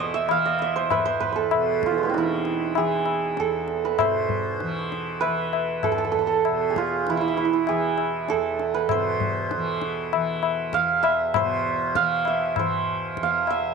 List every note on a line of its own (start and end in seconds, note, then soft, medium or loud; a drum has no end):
0.00 0.93 E2 medium
0.00 1.54 B2 medium
0.00 0.29 E3 medium
0.00 1.35 A4 medium
0.00 0.75 C5 medium
0.00 0.20 D#5 medium
0.14 0.37 E5 medium
0.29 2.16 E3 medium
0.29 0.68 F5 medium
0.29 tabla na medium
0.46 0.68 D#5 medium
0.59 1.92 E5 medium
0.59 tabla na medium
0.76 0.97 C5 medium
0.90 3.37 E2 medium
0.90 1.11 B4 medium
0.90 tabla na medium
0.90 tabla ge medium
1.05 1.26 C5 medium
1.20 1.32 B4 medium
1.20 tabla ge medium
1.32 2.04 A4 medium
1.32 2.15 B4 soft
1.51 4.00 B2 medium
1.51 tabla na medium
1.83 2.24 F4 medium
1.83 tabla ke medium
1.91 2.20 E3 soft
1.91 2.11 F3 soft
1.98 3.46 G#3 soft
2.03 2.20 A3 soft
2.03 4.06 B3 soft
2.09 3.91 C4 soft
2.14 2.78 E3 medium
2.14 5.76 D#4 soft
2.14 tabla te medium
2.18 5.66 E4 medium
2.45 tabla te soft
2.75 4.62 E3 medium
2.75 3.46 G#4 medium
2.75 tabla na medium
3.06 tabla na medium
3.37 5.86 E2 medium
3.37 5.83 A4 medium
3.37 tabla te medium
3.68 tabla te medium
3.85 4.06 B4 medium
3.99 6.48 B2 medium
3.99 5.27 C5 medium
3.99 tabla na medium
3.99 tabla ge medium
4.29 tabla ge medium
4.60 5.24 E3 medium
4.60 tabla te medium
4.92 tabla te medium
5.21 7.08 E3 medium
5.21 7.94 B4 medium
5.21 tabla na medium
5.53 tabla na medium
5.83 8.31 E2 medium
5.83 5.91 A4 medium
5.83 tabla na medium
5.83 tabla ge medium
5.92 5.98 A4 medium
5.98 6.04 A4 medium
6.05 6.11 A4 medium
6.12 6.18 A4 medium
6.12 tabla ge soft
6.19 6.27 A4 medium
6.27 6.76 A4 medium
6.45 8.93 B2 medium
6.45 tabla na medium
6.70 7.68 G#4 medium
6.76 7.16 F4 medium
6.76 tabla ke medium
7.07 7.70 E3 medium
7.07 7.17 E4 medium
7.07 tabla te medium
7.17 7.21 E4 medium
7.17 7.28 E4 medium
7.28 7.37 E4 medium
7.37 7.45 E4 medium
7.37 tabla te medium
7.45 7.53 E4 soft
7.53 10.80 E4 medium
7.67 9.55 E3 soft
7.67 8.36 G#4 medium
7.67 tabla na medium
7.98 tabla na medium
8.29 10.75 E2 medium
8.29 11.23 A4 medium
8.29 tabla te medium
8.60 tabla te medium
8.74 8.97 B4 medium
8.89 11.36 C5 medium
8.89 tabla na medium
8.89 tabla ge medium
8.93 11.37 B2 medium
9.20 tabla ge medium
9.51 tabla te medium
9.55 10.15 E3 medium
9.82 tabla te medium
10.13 11.97 E3 medium
10.13 tabla na medium
10.43 tabla na medium
10.73 13.21 E2 medium
10.73 11.09 F5 medium
10.73 tabla ke medium
11.03 12.02 E5 medium
11.03 tabla na medium
11.34 13.74 B2 medium
11.34 12.59 C5 medium
11.34 tabla na medium
11.34 tabla ge medium
11.95 12.60 E3 medium
11.95 12.33 F5 loud
11.95 tabla ke medium
12.25 13.29 E5 medium
12.25 tabla na medium
12.56 13.74 E3 soft
12.56 13.74 C5 medium
12.56 tabla na medium
12.56 tabla ge medium
13.17 13.74 E2 medium
13.17 tabla ke medium
13.23 13.56 F5 medium
13.47 13.74 E5 medium
13.47 tabla na medium